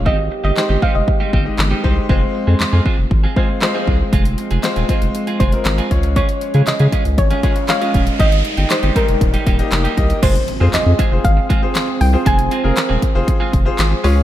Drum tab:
CC |----------------|----------------|----------------|----------------|
HH |----------------|----------------|xxxxxxxxxxxxxxxx|xxxxxxxxxxxxxxxx|
CP |----x-------x---|----x-------x---|----x-------x---|----x-------x---|
SD |----o-------o---|----o-------o---|----o-------o---|----o-------o---|
BD |o-----o-o-o---o-|o-----o-o-o---o-|o-----o---o---o-|o-----o-o-o---o-|

CC |----------------|x---------------|----------------|
HH |xxxxxxxxxxxxxxxx|xxx-x-x-x-x-x-o-|xxx-x-x-x-x-x-o-|
CP |----x-------x---|----x-------x---|----x-------x---|
SD |----o-------o---|----o-------o---|----o-------o---|
BD |o-----o-o-o---o-|o-----o-o-o-----|o-----o-o-o-----|